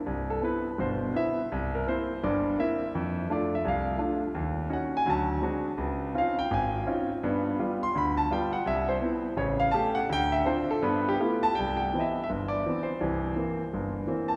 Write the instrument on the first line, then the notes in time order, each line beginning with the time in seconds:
grand piano
0.06 C2
0.30 A4
0.42 B3 C4 E4 B4
0.78 G1 B2 C5
1.14 B3 C4 E4 E5
1.52 C2
1.75 A#4
1.87 A#3 C4 E4 C5
2.23 G1 G2 D5
2.59 A#3 C4 E4 E5
2.95 F2
3.30 A3 D4 F4 D5
3.55 E5
3.65 C2 F5
3.98 A3 D4 F4
4.35 D#2
4.70 C#4 D#4 F#4 F#5
4.97 G#5
5.06 D2 F#3 A5
5.42 G#3 C4 D4 F#4
5.78 C#2
6.14 C4 C#4 D#4 F4 F5
6.39 G5
6.51 G#1 G#5
6.87 C4 C#4 D#4 F4
7.23 G2 B3
7.59 G3 B3 F4
7.83 C6
7.95 D2 B5
8.17 A5
8.31 G3 B3 F4 G5
8.53 F#5
8.66 C2 E5
8.89 C5
9.01 B3 C4 E4
9.37 A1 C#3 C#5
9.60 F5
9.71 A3 C#4 G4 A5
9.95 F#5
10.09 D2 G5
10.32 E5
10.45 C4 D4 F4 C5
10.71 A4
10.82 G2 B3 B4
11.09 G4
11.20 A3 B3 E4 F4 G4
11.43 A5
11.55 C2 G5
11.77 F#5 G5
11.93 E3 B3 C4
11.99 D#5 E5
12.24 E5
12.30 G1
12.48 D5
12.66 E3 B3 C4
12.83 C5
13.01 C2 E3
13.36 E3 A#3 C4
13.74 G1
14.07 E3 A#3 C4
14.28 A5